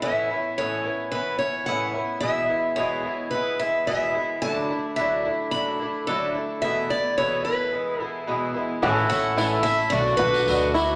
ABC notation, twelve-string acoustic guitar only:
X:1
M:4/4
L:1/8
Q:1/4=109
K:A
V:1 name="Twelve-string acoustic guitar"
[A,,E,B,CE] [B,CE] [A,,E,B,CE] [B,CE] [E,B,CE] [B,CE] [A,,E,B,CE] [B,CE] | [E,,B,,E,G,B,E] [E,G,B,E] [E,,B,,E,G,B,E] [E,G,B,E] [E,G,B,E] [E,G,B,E] [E,,B,,E,G,B,E] [E,G,B,E] | [D,F,A,DE] [A,DE] [D,F,A,DE] [A,DE] [F,A,DE] [A,DE] [D,F,A,DE] [A,DE] | [E,,B,,E,A,B,E] [E,A,B,E] [E,,B,,E,A,B,E] [E,A,B,E] [E,G,B,E] [E,G,B,E] [E,,B,,E,G,B,E] [E,G,B,E] |
[A,,E,A,CE] [A,CE] [A,,E,A,CE] [A,CE] [F,A,DF] [A,DF] [B,,F,A,DF] [A,DF] |]